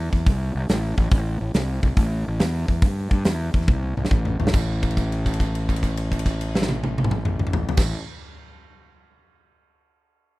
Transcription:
Already playing: fingered electric bass E2
0.13 fingered electric bass E2, kick
0.26 fingered electric bass C2, kick, open hi-hat
0.55 fingered electric bass C2
0.69 fingered electric bass A1, snare, open hi-hat
0.97 fingered electric bass A1, kick
1.11 fingered electric bass A1, kick, open hi-hat
1.40 fingered electric bass A1
1.54 fingered electric bass C2, snare, open hi-hat
1.83 fingered electric bass C2, kick
1.97 fingered electric bass A1, kick, open hi-hat
2.28 fingered electric bass A1
2.40 fingered electric bass E2, snare, open hi-hat
2.68 fingered electric bass E2, kick
2.82 fingered electric bass G2, kick, open hi-hat
3.11 fingered electric bass G2, kick
3.25 fingered electric bass E2, snare, open hi-hat
3.54 fingered electric bass E2, kick
3.61 snare
3.68 fingered electric bass C2, kick, high tom
3.83 high tom
3.97 fingered electric bass C2, mid tom
4.05 snare
4.10 fingered electric bass A1, kick
4.25 mid tom
4.40 fingered electric bass A1, floor tom
4.47 snare
4.54 fingered electric bass A1, kick, crash
4.83 kick, crash
4.91 crash
4.97 kick, crash
5.12 crash
5.26 kick, crash
5.34 crash
5.40 kick, crash
5.55 crash
5.69 kick, crash
5.76 crash
5.83 kick, crash
5.97 crash
6.12 kick, crash
6.19 crash
6.26 kick, crash
6.41 crash
6.55 snare
6.62 snare
6.69 high tom
6.83 high tom
6.98 high tom
7.04 mid tom
7.11 mid tom
7.25 mid tom
7.39 mid tom
7.47 mid tom
7.53 floor tom
7.69 floor tom
7.77 fingered electric bass A1, kick, snare, crash

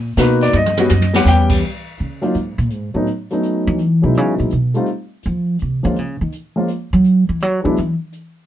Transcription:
Already playing: upright bass A#2
0.17 upright bass B2, grand piano A#3 B3 D#4 F#4 B4, kick, snare, hi-hat pedal
0.41 grand piano D5, snare
0.53 upright bass G2, grand piano D#5, mid tom
0.66 mid tom
0.77 grand piano G3 B3 C#4 F#4, mid tom
0.89 upright bass F#2, hi-hat pedal, high tom
1.02 high tom
1.14 grand piano G3 B3 C#4 G4 F#5, snare
1.25 upright bass E2, grand piano G5, snare
1.50 kick, crash
1.98 upright bass C#3, closed hi-hat
2.22 grand piano F#3 A#3 C#4 D#4 F4, closed hi-hat
2.34 upright bass G#2, closed hi-hat
2.58 upright bass A#2, closed hi-hat
2.70 upright bass G#2, closed hi-hat
2.94 upright bass A2, grand piano F#3 A3 B3 C#4 D#4
3.06 closed hi-hat
3.30 grand piano F#3 A3 B3 C#4 D#4, closed hi-hat
3.43 closed hi-hat
3.67 upright bass E3
3.78 closed hi-hat
4.02 upright bass B2, grand piano F#3 G#3 B3 D#4 E4
4.14 upright bass C#3, closed hi-hat
4.38 upright bass A#2, closed hi-hat
4.50 upright bass B2, closed hi-hat
4.74 grand piano G3 A3 C4 D#4 F4, closed hi-hat
4.86 closed hi-hat
5.23 upright bass F3, closed hi-hat
5.59 upright bass C3, closed hi-hat
5.83 upright bass D3, grand piano F3 G#3 A#3 C#4 F4, closed hi-hat
5.96 upright bass C#3, closed hi-hat
6.21 upright bass D#3
6.32 closed hi-hat
6.56 grand piano F3 G#3 A#3 C#4 F4
6.68 closed hi-hat
6.93 upright bass F#3
7.04 closed hi-hat
7.29 upright bass E3
7.40 upright bass F#3, closed hi-hat
7.64 upright bass D3, grand piano F#3 G#3 B3 D4 E4
7.77 upright bass E3, closed hi-hat
8.12 closed hi-hat

